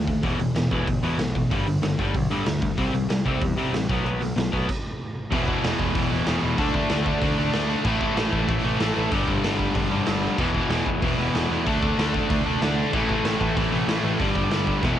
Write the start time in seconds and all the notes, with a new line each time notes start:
Already playing: D#2
0.07 D3 A3, kick, open hi-hat
0.23 E1 E2 B2 E3, kick, open hi-hat
0.39 E1 E2 B2, open hi-hat
0.55 E1 E2 B2, snare, open hi-hat
0.71 E1 E2 B2 E3, kick, open hi-hat
0.88 G1 E2 B2, kick, open hi-hat
1.02 E2 B2 E3, open hi-hat
1.18 B1 E2 B2, snare, open hi-hat
1.35 E2 B2, kick, open hi-hat
1.51 G1 G2 D3 G3, kick, open hi-hat
1.66 G1 G2 D3, open hi-hat
1.82 G1 G2 D3, snare, open hi-hat
1.99 G1 G2 D3 G3, kick, open hi-hat
2.14 B1 G2 D3, kick, open hi-hat
2.30 G2 D3 G3, open hi-hat
2.46 D2 G2 D3, snare, open hi-hat
2.62 G2 D3, kick, open hi-hat
2.78 C2 C3 G3 C4, kick, open hi-hat
2.94 C2 C3 G3, open hi-hat
3.09 C2 C3 G3, snare, open hi-hat
3.26 C2 C3 G3 C4, kick, open hi-hat
3.41 E2 C3 G3, kick, open hi-hat
3.56 C3 G3 C4, open hi-hat
3.73 A1 C3 G3, snare, open hi-hat
3.89 B1 B2 F#3 B3, kick, open hi-hat
4.04 B1 B2 F#3 B3, open hi-hat
4.20 B1 B2 F#3, open hi-hat
4.36 B1 B2 F#3, snare, open hi-hat
4.53 B1 B2 F#3 B3, kick, open hi-hat
4.69 kick, crash
5.30 E1 E2 B2 E3, kick, open hi-hat
5.48 E2 B2 E3, kick
5.64 E1 E2 B2 E3, snare, open hi-hat
5.79 E1 E2 B2 E3, kick
5.95 E1 E2 B2 E3, kick, open hi-hat
6.10 E1 E2 B2 E3
6.25 E1 E2 B2 E3, snare, open hi-hat
6.43 E1 E2 B2 E3
6.58 D2 D3 A3 D4, kick, open hi-hat
6.74 D2 D3 A3 D4, kick
6.89 D2 D3 A3 D4, snare, open hi-hat
7.06 D3 A3 D4, kick
7.22 D2 D3 A3 D4, kick, open hi-hat
7.38 D2 D3 A3 D4
7.52 D2 D3 A3 D4, snare, open hi-hat
7.69 D3 A3 D4
7.85 A1 A2 E3 A3, kick, crash
8.01 A2 E3 A3, kick
8.16 A1 A2 E3 A3, snare, open hi-hat
8.32 A1 A2 E3 A3, kick
8.48 A1 A2 E3 A3, kick, open hi-hat
8.63 A1 A2 E3 A3
8.80 A1 A2 E3 A3, snare, open hi-hat
8.96 A1 A2 E3 A3
9.11 G1 G2 D3 G3, kick, open hi-hat
9.28 G1 G2 D3 G3, kick
9.43 G1 G2 D3 G3, snare, open hi-hat
9.59 G2 D3 G3, kick
9.75 G1 G2 D3 G3, kick, open hi-hat
9.90 G1 G2 D3 G3
10.06 G1 G2 D3 G3, snare, open hi-hat
10.23 G2 D3 G3
10.38 E1 E2 B2 E3, kick, crash
10.53 E2 B2 E3, kick
10.70 E1 E2 B2 E3, snare, open hi-hat
10.86 E1 E2 B2 E3, kick
11.02 E1 E2 B2 E3, kick, open hi-hat
11.18 E1 E2 B2 E3
11.34 E1 E2 B2 E3, snare, open hi-hat
11.50 E2 B2 E3
11.66 D2 D3 A3 D4, kick, open hi-hat
11.81 D2 D3 A3 D4, kick
11.98 D2 D3 A3 D4, snare, open hi-hat
12.14 D3 A3 D4, kick
12.29 D2 D3 A3 D4, kick, open hi-hat
12.45 D2 D3 A3 D4
12.60 D2 D3 A3 D4, snare, open hi-hat
12.77 D3 A3 D4
12.92 A1 A2 E3 A3, kick, crash
13.09 A2 E3 A3, kick
13.24 A1 A2 E3 A3, snare, open hi-hat
13.40 A1 A2 E3 A3, kick
13.55 A1 A2 E3 A3, kick, open hi-hat
13.71 A1 A2 E3 A3
13.87 A1 A2 E3 A3, snare, open hi-hat
14.03 A1 A2 E3 A3
14.19 G1 G2 D3 G3, kick, open hi-hat
14.35 G1 G2 D3 G3, kick
14.50 G1 G2 D3 G3, snare, open hi-hat
14.67 G2 D3 G3, kick
14.82 E1 E2 B2 E3, kick, snare